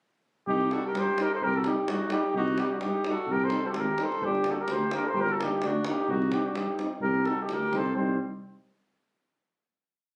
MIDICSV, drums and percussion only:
0, 0, Header, 1, 2, 480
1, 0, Start_track
1, 0, Tempo, 467654
1, 489, Time_signature, 2, 2, 24, 8
1, 10425, End_track
2, 0, Start_track
2, 0, Title_t, "Davul"
2, 483, Note_on_c, 9, 43, 68
2, 586, Note_off_c, 9, 43, 0
2, 624, Note_on_c, 9, 37, 24
2, 726, Note_off_c, 9, 37, 0
2, 730, Note_on_c, 9, 37, 49
2, 833, Note_off_c, 9, 37, 0
2, 976, Note_on_c, 9, 37, 65
2, 1079, Note_off_c, 9, 37, 0
2, 1210, Note_on_c, 9, 37, 63
2, 1313, Note_off_c, 9, 37, 0
2, 1449, Note_on_c, 9, 43, 74
2, 1552, Note_off_c, 9, 43, 0
2, 1577, Note_on_c, 9, 37, 24
2, 1680, Note_off_c, 9, 37, 0
2, 1685, Note_on_c, 9, 37, 57
2, 1788, Note_off_c, 9, 37, 0
2, 1931, Note_on_c, 9, 37, 77
2, 2033, Note_off_c, 9, 37, 0
2, 2157, Note_on_c, 9, 37, 68
2, 2259, Note_off_c, 9, 37, 0
2, 2405, Note_on_c, 9, 43, 78
2, 2508, Note_off_c, 9, 43, 0
2, 2541, Note_on_c, 9, 37, 25
2, 2644, Note_off_c, 9, 37, 0
2, 2644, Note_on_c, 9, 37, 66
2, 2747, Note_off_c, 9, 37, 0
2, 2883, Note_on_c, 9, 37, 62
2, 2985, Note_off_c, 9, 37, 0
2, 3125, Note_on_c, 9, 37, 59
2, 3228, Note_off_c, 9, 37, 0
2, 3363, Note_on_c, 9, 43, 78
2, 3466, Note_off_c, 9, 43, 0
2, 3488, Note_on_c, 9, 37, 21
2, 3591, Note_off_c, 9, 37, 0
2, 3593, Note_on_c, 9, 37, 62
2, 3695, Note_off_c, 9, 37, 0
2, 3724, Note_on_c, 9, 37, 19
2, 3827, Note_off_c, 9, 37, 0
2, 3842, Note_on_c, 9, 37, 68
2, 3944, Note_off_c, 9, 37, 0
2, 4085, Note_on_c, 9, 37, 57
2, 4187, Note_off_c, 9, 37, 0
2, 4229, Note_on_c, 9, 37, 27
2, 4332, Note_off_c, 9, 37, 0
2, 4332, Note_on_c, 9, 43, 83
2, 4434, Note_off_c, 9, 43, 0
2, 4465, Note_on_c, 9, 37, 23
2, 4559, Note_off_c, 9, 37, 0
2, 4559, Note_on_c, 9, 37, 58
2, 4662, Note_off_c, 9, 37, 0
2, 4801, Note_on_c, 9, 37, 71
2, 4904, Note_off_c, 9, 37, 0
2, 5043, Note_on_c, 9, 37, 70
2, 5146, Note_off_c, 9, 37, 0
2, 5278, Note_on_c, 9, 43, 75
2, 5381, Note_off_c, 9, 43, 0
2, 5425, Note_on_c, 9, 37, 23
2, 5527, Note_off_c, 9, 37, 0
2, 5548, Note_on_c, 9, 37, 67
2, 5651, Note_off_c, 9, 37, 0
2, 5765, Note_on_c, 9, 37, 66
2, 5867, Note_off_c, 9, 37, 0
2, 6000, Note_on_c, 9, 37, 75
2, 6102, Note_off_c, 9, 37, 0
2, 6246, Note_on_c, 9, 43, 98
2, 6349, Note_off_c, 9, 43, 0
2, 6383, Note_on_c, 9, 37, 24
2, 6483, Note_off_c, 9, 37, 0
2, 6483, Note_on_c, 9, 37, 67
2, 6585, Note_off_c, 9, 37, 0
2, 6728, Note_on_c, 9, 37, 69
2, 6830, Note_off_c, 9, 37, 0
2, 6968, Note_on_c, 9, 37, 58
2, 7071, Note_off_c, 9, 37, 0
2, 7187, Note_on_c, 9, 43, 74
2, 7290, Note_off_c, 9, 43, 0
2, 7336, Note_on_c, 9, 37, 18
2, 7439, Note_off_c, 9, 37, 0
2, 7446, Note_on_c, 9, 37, 47
2, 7548, Note_off_c, 9, 37, 0
2, 7686, Note_on_c, 9, 37, 65
2, 7788, Note_off_c, 9, 37, 0
2, 7932, Note_on_c, 9, 37, 53
2, 8035, Note_off_c, 9, 37, 0
2, 8063, Note_on_c, 9, 37, 20
2, 8166, Note_off_c, 9, 37, 0
2, 8173, Note_on_c, 9, 43, 66
2, 8275, Note_off_c, 9, 43, 0
2, 10425, End_track
0, 0, End_of_file